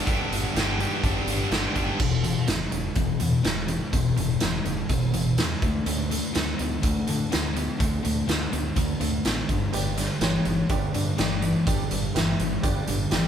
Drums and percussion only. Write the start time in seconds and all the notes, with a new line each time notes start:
0.07 kick, closed hi-hat
0.32 closed hi-hat
0.56 snare, closed hi-hat
0.80 closed hi-hat
1.04 kick, closed hi-hat
1.27 closed hi-hat
1.52 snare, closed hi-hat
1.76 kick, closed hi-hat
2.00 kick, crash
2.24 closed hi-hat
2.48 snare, closed hi-hat
2.72 closed hi-hat
2.95 kick, closed hi-hat
3.20 closed hi-hat
3.44 snare, closed hi-hat
3.68 closed hi-hat
3.93 kick, closed hi-hat
4.17 closed hi-hat
4.40 snare, closed hi-hat
4.65 closed hi-hat
4.89 kick, closed hi-hat
5.14 closed hi-hat
5.38 snare, closed hi-hat
5.62 kick, closed hi-hat
5.86 closed hi-hat
6.11 closed hi-hat
6.35 snare, closed hi-hat
6.59 closed hi-hat
6.83 kick, closed hi-hat
7.07 closed hi-hat
7.32 snare, closed hi-hat
7.56 closed hi-hat
7.80 kick, closed hi-hat
8.05 closed hi-hat
8.29 snare, closed hi-hat
8.53 closed hi-hat
8.76 kick, closed hi-hat
9.01 closed hi-hat
9.25 snare, closed hi-hat
9.49 kick, closed hi-hat
9.73 closed hi-hat
9.97 snare, closed hi-hat
10.21 snare, closed hi-hat
10.45 closed hi-hat
10.69 kick, closed hi-hat
10.94 closed hi-hat
11.18 snare, closed hi-hat
11.42 closed hi-hat
11.67 kick, closed hi-hat
11.91 closed hi-hat
12.16 snare, closed hi-hat
12.40 closed hi-hat
12.64 kick, closed hi-hat
12.87 closed hi-hat
13.11 snare, closed hi-hat